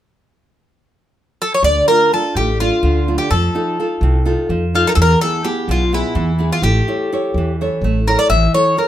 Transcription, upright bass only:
1.63 D2
2.35 A1
2.83 D2
3.31 F2
4.01 C2
4.49 F2
4.97 E2
5.68 B1
6.15 E2
6.62 A1
7.34 E2
7.82 A1
8.29 A1

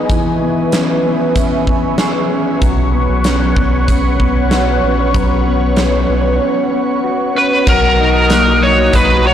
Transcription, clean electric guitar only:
Already playing: B3 D#4 G#4
0.10 E3
0.41 B3
0.73 C#4
1.05 B3
1.36 C#4
1.67 B3
1.99 G#4
2.31 C#4
2.62 F#3
2.93 B3
3.26 C#4
3.58 B3
3.89 C#4
4.20 B3
4.52 F#4
4.84 C#4
5.15 F#3
5.47 B3
5.78 C#4
6.09 B3
6.40 C#4
6.72 B3
7.04 F#4
7.35 C#4
7.66 F#3 F#4
7.99 D#4
8.30 A#3
8.62 D#4
9.25 F#4

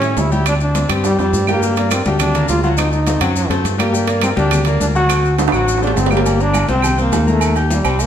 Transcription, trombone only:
Already playing: C#4
0.20 E4
0.34 E4
0.49 D4
0.63 D4
0.92 C4
1.06 G3
1.21 G3
1.50 A#3
1.92 C4
2.06 D4
2.20 D4
2.49 F4
2.64 F4
2.77 D#4
2.93 D#4
3.23 C4
3.36 F#3
3.80 A#3
4.24 C4
4.38 D4
4.81 D4
4.96 F#4
5.53 F#4
5.84 D4
5.97 C4
6.13 A#3
6.42 D4
6.71 C4
7.01 A#3
7.30 A3
7.74 G3
8.02 A#3

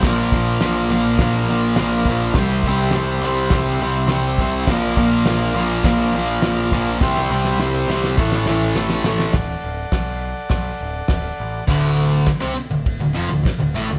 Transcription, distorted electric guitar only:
0.04 A#2 F3 A#3
0.34 A#2 F3 A#3
0.61 A#2 F3 A#3
0.90 A#2 F3 A#3
1.21 A#2 F3 A#3
1.49 A#2 F3 A#3
1.77 A#2 F3 A#3
2.08 A#2 F3 A#3
2.37 C3 G3 C4
2.67 C3 G3 C4
2.96 C3 G3 C4
3.24 C3 G3 C4
3.53 C3 G3 C4
3.82 C3 G3 C4
4.11 C3 G3 C4
4.40 C3 G3 C4
4.69 A#2 F3 A#3
4.97 A#2 F3 A#3
5.27 A#2 F3 A#3
5.55 A#2 F3 A#3
5.84 A#2 F3 A#3
6.14 A#2 F3 A#3
6.43 A#2 F3 A#3
6.72 A#2 F3 A#3
7.01 C3 G3 C4
7.31 C3 G3 C4
7.60 C3 G3 C4
7.88 C3 G3 C4
8.18 A2 E3 A3
8.47 A2 E3 A3
8.77 A2 E3 A3
9.05 A2 E3 A3
11.68 D2 D3
12.28 muted distorted electric guitar stroke
12.40 C3 C4
12.55 muted distorted electric guitar stroke
12.71 D2
13.01 D2
13.14 F2 F3
13.29 D2
13.44 muted distorted electric guitar stroke
13.59 D2
13.74 A2 A3
13.90 D2

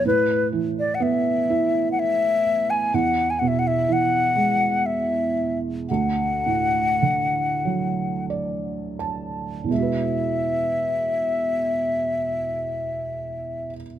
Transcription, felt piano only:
0.05 A2
0.52 E3
1.00 B3
1.50 E4
2.94 E2
3.41 B2
3.88 E3
4.36 G#3
5.91 D2
6.46 A2
7.02 D3
7.65 F#3
8.30 D5
8.99 A5
9.64 E2
9.68 B2 G#3
9.74 E4 F#4
9.82 B4

